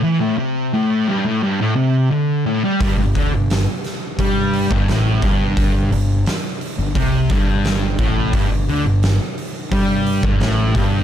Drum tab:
HH |----------------|o-o-o-o-o-o-o-o-|o-o-o-o-o-o-o-o-|o-o-o-o-o-o-o-o-|
SD |----------------|----o-o-----o---|----o-------o---|----o-------o---|
BD |----------------|o-o-----o--o--o-|o-------o-o---o-|o-------o--o--o-|